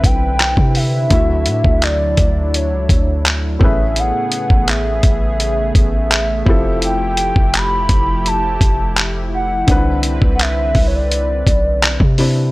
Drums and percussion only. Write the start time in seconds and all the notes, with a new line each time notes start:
0.04 kick, closed hi-hat
0.39 cross-stick, clap, closed hi-hat
0.57 kick
0.75 open hi-hat
1.10 kick, closed hi-hat
1.46 closed hi-hat
1.64 kick
1.82 clap, closed hi-hat
2.17 kick, closed hi-hat
2.54 closed hi-hat
2.89 kick, closed hi-hat
3.25 clap, closed hi-hat
3.61 kick
3.96 closed hi-hat
4.32 closed hi-hat
4.50 kick
4.68 clap, closed hi-hat
5.03 kick, closed hi-hat
5.40 closed hi-hat
5.75 kick, closed hi-hat
6.11 clap, closed hi-hat
6.46 kick
6.82 closed hi-hat
7.17 closed hi-hat
7.36 kick
7.54 clap, closed hi-hat
7.89 kick, closed hi-hat
8.26 closed hi-hat
8.61 kick, closed hi-hat
8.97 clap, closed hi-hat
9.68 kick, closed hi-hat
10.03 closed hi-hat
10.22 kick
10.39 clap, closed hi-hat
10.75 kick, open hi-hat
11.12 closed hi-hat
11.47 kick, closed hi-hat
11.83 cross-stick, clap, closed hi-hat
12.00 kick
12.18 open hi-hat